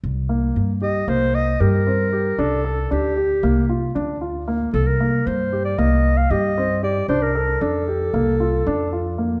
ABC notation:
X:1
M:9/8
L:1/16
Q:3/8=77
K:Cdor
V:1 name="Clarinet"
z6 e2 c2 e2 B6 | A4 G8 z6 | A B3 c3 d e3 f e4 d2 | c B3 A12 z2 |]
V:2 name="Grand piano"
z2 B,4 G2 B,4 G2 C2 G2 | D2 A2 D2 G2 B,2 F2 D2 F2 B,2 | z2 B,4 G2 B,4 G2 C2 G2 | D2 A2 D2 G2 B,2 F2 D2 F2 B,2 |]
V:3 name="Upright bass" clef=bass
C,,4 G,,4 C,,4 G,,6 | C,,4 D,,4 C,,4 D,,6 | C,,4 G,,4 C,,4 G,,6 | C,,4 F,,4 C,,4 F,,6 |]